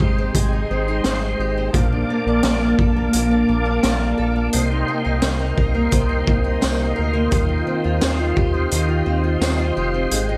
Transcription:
Already playing: D#3 G#3 C4 D#4 D#5 G5 C6
0.00 G#1 G4, kick
0.18 C4
0.35 G#1 G#3, kick, closed hi-hat
0.53 D#4
0.70 G#1 C4
0.88 D#4
1.04 G#1 C4, snare, closed hi-hat
1.22 D#4
1.39 G#1 G4
1.57 C4
1.73 A#1 A#2 A#3 F5 A5 D6, kick, closed hi-hat
1.92 D4
2.10 A#3
2.26 A#1 D4
2.43 A#1 A#3, snare, closed hi-hat
2.61 D4
2.79 A#1 A4, kick
2.96 A#3
3.13 A#1 A#2, closed hi-hat
3.31 D4
3.48 A#1 A#3
3.65 D4
3.83 A#1 A#3, snare, closed hi-hat
4.00 D4
4.18 A#1 A4
4.36 A#3
4.53 C2 C3 D#5 G5 C6, closed hi-hat
4.71 D#4
4.88 A#3
5.05 C2 D#4
5.22 C2 A#3, snare, closed hi-hat, tambourine
5.39 D#4
5.57 C2 A#4, kick
5.75 A#3
5.91 C2 C3, kick, closed hi-hat
6.09 D#4
6.27 C2 A#3, kick
6.44 D#4
6.61 C2 A#3, snare, closed hi-hat, tambourine
6.79 D#4
6.96 D2 A#4
7.13 A#3
7.31 D#2 D#3 F4 C6, kick, closed hi-hat
7.49 F4
7.67 C4
7.84 D#2 F4
8.01 D#2 C4, snare, closed hi-hat, tambourine
8.19 F4
8.36 D#2 G4, kick
8.54 C4
8.71 D#2 D#3, closed hi-hat
8.89 F4
9.06 D#2 C4
9.24 F4
9.41 D#2 C4, snare, closed hi-hat, tambourine
9.59 F4
9.77 F1 G4
9.94 C4
10.10 G#1 G#3, closed hi-hat
10.29 D#4

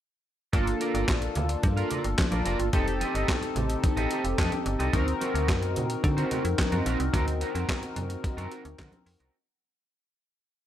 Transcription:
0.53 G1 A#3 D4 F4 A4 A#4 D5, kick, closed hi-hat, muted conga
0.67 muted clean electric guitar stroke, closed hi-hat
0.81 F4 A#4 D5, closed hi-hat
0.94 G1 F4 A#4 D5, closed hi-hat
1.08 A#1, kick, snare, clap, closed hi-hat, high conga
1.22 muted clean electric guitar stroke, closed hi-hat
1.35 D2, closed hi-hat, low conga
1.49 muted clean electric guitar stroke, closed hi-hat
1.63 G2, muted clean electric guitar stroke, kick, closed hi-hat, muted conga
1.77 F4 A#4 F5, closed hi-hat
1.90 F4 A#4 D5, closed hi-hat, low conga
2.04 G1, muted clean electric guitar stroke, closed hi-hat
2.18 muted clean electric guitar stroke, kick, snare, clap, closed hi-hat, high conga
2.32 A#1 F4 A#4 D5, closed hi-hat, high conga
2.45 F1 F4 A#4 D5, closed hi-hat
2.59 G1, muted clean electric guitar stroke, closed hi-hat
2.73 F1 C4 D#4 G4 A4 D#5, kick, closed hi-hat, muted conga
2.87 muted clean electric guitar stroke, closed hi-hat
3.00 G4 A4 D#5, closed hi-hat, muted conga
3.14 G1 G4 A4 D#5, closed hi-hat
3.28 muted clean electric guitar stroke, kick, snare, clap, closed hi-hat, high conga
3.42 muted clean electric guitar stroke, closed hi-hat
3.56 A1, closed hi-hat, low conga
3.69 muted clean electric guitar stroke, closed hi-hat
3.83 muted clean electric guitar stroke, kick, closed hi-hat, muted conga
3.97 A1 G4 A4 D#5, closed hi-hat
4.11 G4 A4 D#5, closed hi-hat
4.24 F1, muted clean electric guitar stroke, closed hi-hat
4.38 F2 G4 A4 D#5, kick, snare, clap, closed hi-hat, high conga
4.52 muted clean electric guitar stroke, closed hi-hat, high conga
4.66 G1, muted clean electric guitar stroke, closed hi-hat
4.79 C2 G4 A4 D#5, closed hi-hat
4.93 D2 C4 D#4 F#4 A#4, kick, closed hi-hat, muted conga
5.07 muted clean electric guitar stroke, closed hi-hat
5.21 C4 F#4 A#4, closed hi-hat, muted conga
5.34 D2 C4 F#4 A#4, closed hi-hat
5.48 F#2, muted clean electric guitar stroke, kick, snare, clap, closed hi-hat, high conga
5.62 muted clean electric guitar stroke, closed hi-hat
5.76 A#2, closed hi-hat, low conga
5.90 muted clean electric guitar stroke, closed hi-hat
6.03 D3, muted clean electric guitar stroke, kick, closed hi-hat, muted conga
6.17 C4 F#4 C5, closed hi-hat
6.31 C4 F#4 A#4, closed hi-hat, low conga
6.44 F2, muted clean electric guitar stroke, closed hi-hat
6.58 muted clean electric guitar stroke, kick, snare, clap, closed hi-hat, high conga
6.72 F#2 C4 F#4 A#4, closed hi-hat, high conga
6.86 A#1 C4 F#4 A#4, closed hi-hat
7.00 C2, muted clean electric guitar stroke, closed hi-hat
7.13 D2 C4 F#4 A#4, kick, closed hi-hat, muted conga
7.27 muted clean electric guitar stroke, closed hi-hat
7.41 C4 F#4 A#4, closed hi-hat
7.55 F2 C4 F#4 A#4, closed hi-hat
7.68 muted clean electric guitar stroke, kick, snare, clap, closed hi-hat, high conga
7.82 muted clean electric guitar stroke, closed hi-hat
7.96 F#2, closed hi-hat, low conga
8.09 muted clean electric guitar stroke, closed hi-hat
8.23 muted clean electric guitar stroke, kick, closed hi-hat, muted conga
8.37 F#2 C4 F#4 A#4, closed hi-hat
8.51 C4 F#4 A#4, closed hi-hat
8.65 D2, muted clean electric guitar stroke, closed hi-hat
8.79 D3 C4 F#4 A#4, kick, snare, clap, closed hi-hat, high conga
8.92 muted clean electric guitar stroke, closed hi-hat, high conga
9.06 F2, muted clean electric guitar stroke, open hi-hat
9.20 C2 C4 F#4 A#4, closed hi-hat

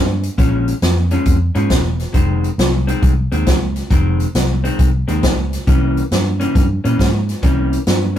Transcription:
Already playing: G2
0.23 closed hi-hat
0.38 A#1 A#2 F3 G#3 C#4, kick, closed hi-hat
0.68 closed hi-hat
0.82 F2, snare, closed hi-hat
1.11 A#2 F3 G#3 C#4, closed hi-hat
1.25 F2, kick, closed hi-hat
1.55 G#2 A#2 F3 G#3 C#4, closed hi-hat
1.70 E1, kick, snare, closed hi-hat
1.99 snare, closed hi-hat
2.13 F1 F2 D#3 G#3 C4, kick, closed hi-hat
2.44 closed hi-hat
2.58 C2, snare, closed hi-hat
2.87 F2 D#3 G#3 C4, closed hi-hat
3.02 C2, kick, closed hi-hat
3.32 D#2 F2 D#3 G#3 C4, closed hi-hat
3.46 C#2, kick, snare, closed hi-hat
3.76 snare, closed hi-hat
3.90 F1 F2 D#3 G#3 C4, kick, closed hi-hat
4.20 closed hi-hat
4.35 C2, snare, closed hi-hat
4.64 F2 D#3 G#3 C4, closed hi-hat
4.79 C2, kick, closed hi-hat
5.08 D#2 F2 D#3 G#3 C4, closed hi-hat
5.23 C#2, kick, snare, closed hi-hat
5.53 snare, closed hi-hat
5.67 C2 C3 E3 A#3 C#4, kick, closed hi-hat
5.97 closed hi-hat
6.11 G2, snare, closed hi-hat
6.40 C3 E3 A#3 C#4, closed hi-hat
6.55 G2, kick, closed hi-hat
6.84 A#2 C3 E3 A#3 C#4, closed hi-hat
6.99 G#2, kick, snare, closed hi-hat
7.29 snare, closed hi-hat
7.43 C2 C3 E3 A#3 C#4, kick, closed hi-hat
7.73 closed hi-hat
7.87 G2, snare, closed hi-hat

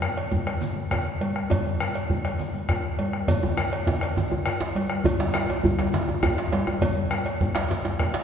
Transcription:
0.02 bombo rim, high conga
0.17 bombo rim, cowbell, djembe slap, shekere
0.32 bombo low, high conga, djembe tone, djembe bass, shekere
0.47 bombo rim, cowbell, djembe slap, shekere
0.61 djembe slap, low conga, shekere
0.76 bombo rim, high conga
0.91 bombo rim, bombo low, cowbell, high conga, djembe tone, djembe bass
1.06 djembe slap, high conga
1.21 cowbell, high conga
1.36 bombo rim
1.50 bombo low, cowbell, djembe slap, djembe tone, high conga, djembe bass, low conga, shekere
1.66 high conga, shekere
1.80 bombo rim, high conga
1.95 bombo rim, cowbell, djembe slap, shekere
2.10 bombo low, djembe tone, high conga, djembe bass
2.25 bombo rim, cowbell, shekere
2.39 djembe slap, high conga, low conga, shekere
2.54 bombo rim, djembe slap, high conga, shekere
2.69 bombo rim, bombo low, cowbell, djembe tone, high conga, djembe bass
2.84 bombo rim, djembe slap
2.99 bombo rim, cowbell, high conga
3.13 bombo rim, djembe slap
3.28 bombo low, cowbell, djembe slap, djembe tone, high conga, djembe bass, low conga, shekere
3.43 djembe tone, high conga
3.57 bombo rim, djembe tone, high conga
3.72 bombo rim, cowbell, djembe slap, shekere
3.87 bombo low, djembe slap, djembe tone, djembe bass, shekere
4.01 bombo rim, cowbell, djembe slap, shekere
4.16 djembe slap, djembe tone, low conga, shekere
4.31 bombo rim, high conga, djembe tone
4.46 bombo rim, cowbell, high conga, djembe tone, djembe bass
4.60 djembe slap, high conga
4.76 cowbell, high conga
4.90 bombo rim
5.04 bombo low, cowbell, djembe slap, high conga, djembe tone, low conga, djembe bass, shekere
5.19 djembe slap, high conga
5.34 bombo rim, djembe slap, high conga
5.49 bombo rim, cowbell, djembe slap, djembe tone, shekere
5.63 bombo low, high conga, djembe tone, djembe bass, shekere
5.78 bombo rim, cowbell, djembe slap, shekere
5.93 djembe slap, low conga, shekere
6.08 bombo rim, high conga, djembe tone
6.23 bombo rim, bombo low, cowbell, djembe tone, high conga, djembe bass
6.38 djembe slap, high conga
6.52 cowbell, djembe slap, high conga
6.67 bombo rim, djembe tone
6.81 bombo low, cowbell, djembe slap, djembe tone, high conga, djembe bass, low conga, shekere
6.97 high conga
7.11 bombo rim, high conga
7.26 bombo rim, cowbell, djembe slap, shekere
7.41 bombo low, djembe tone, high conga, djembe bass, shekere
7.55 bombo rim, cowbell, djembe slap, shekere
7.70 djembe slap, low conga, shekere
7.85 bombo rim, djembe slap, high conga
7.99 bombo rim, bombo low, cowbell, high conga, djembe tone, djembe bass
8.14 djembe slap, high conga

